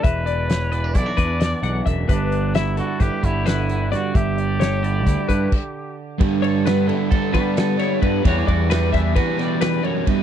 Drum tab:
CC |---------|---------|------x--|---------|
RD |---------|---------|---------|xxxxxxxxx|
HH |xxxxxxxxx|xxxxxxxxx|xxxxxx---|---------|
SD |--o---o--|--o---o-o|--o------|--o---oo-|
BD |o---oo--o|o---oo---|o---ooo--|o---oo--o|

CC |---------|
RD |xxxxxxxxx|
HH |---------|
SD |--oo-oo--|
BD |oo-oo---o|